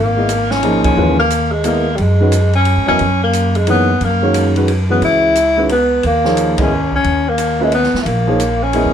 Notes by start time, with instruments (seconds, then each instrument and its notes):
Already playing: upright bass G#1, tenor saxophone A#3
0.17 upright piano G#3 B3 E4 A#4 D#5
0.29 hi-hat pedal, ride
0.51 tenor saxophone C#4, snare
0.63 upright piano F3 A#3 D#4 G#4 D#5, ride
0.84 upright bass C#2, tenor saxophone C#4, kick, ride
0.97 upright bass D#2, upright piano E3 G#3 C#4 F4 B4
1.19 tenor saxophone A#3
1.30 hi-hat pedal, ride
1.52 tenor saxophone G#3
1.64 upright piano G#3 B3 E4 A#4 D#5, tenor saxophone A#3, hi-hat pedal, ride
1.96 upright bass F#2, tenor saxophone G3, ride
2.00 tenor saxophone G#3
2.20 upright piano D#3 G#3 C#4 F#4 B4
2.32 hi-hat pedal, ride
2.53 tenor saxophone C#4, ride
2.65 ride
2.77 upright bass G#2
2.87 upright bass E2, upright piano F#3 B3 E4 A#4 D#5, tenor saxophone C#4
2.99 upright bass F#2, ride
3.23 tenor saxophone A#3
3.33 hi-hat pedal, ride
3.55 tenor saxophone G#3, ride
3.67 upright piano E3 A#3 D#4 G#4 C#5, tenor saxophone B3, ride
4.01 upright bass F#2, tenor saxophone A#3, ride
4.22 upright piano D#3 G#3 C#4 F#4 C#5
4.34 hi-hat pedal, ride
4.56 upright piano D#3 G#3 C#4 F#4 B4, ride
4.68 ride
4.89 upright piano E3 G#3 C#4 F#4 B4, tenor saxophone B3
5.01 upright bass C#2, tenor saxophone E4, ride
5.35 hi-hat pedal, ride
5.57 upright piano D#3 G#3 C#4 F#4 B4
5.69 tenor saxophone B3, ride
6.03 upright bass D#2, tenor saxophone A#3, ride
6.24 upright piano F3 A#3 D#4 G#4 C#5, snare
6.37 hi-hat pedal, ride
6.58 upright piano G#3 B3 E4 A#4 D#5, kick, ride
6.62 tenor saxophone C#4
6.92 tenor saxophone C#4, kick
7.04 upright bass D#2, ride
7.29 tenor saxophone A#3
7.38 hi-hat pedal, ride
7.60 tenor saxophone G#3, upright piano A#3 C#4 F4 B4 E5
7.72 tenor saxophone B3, ride
7.83 snare
7.93 muted upright bass stroke, snare
8.02 upright bass A#1, tenor saxophone A3, ride
8.06 tenor saxophone A#3
8.27 upright piano F3 A#3 D#4 G#4 C#5
8.40 hi-hat pedal, ride
8.63 tenor saxophone C#4
8.73 upright piano G#3 B3 E4 A#4 D#5, ride
8.85 upright bass D#2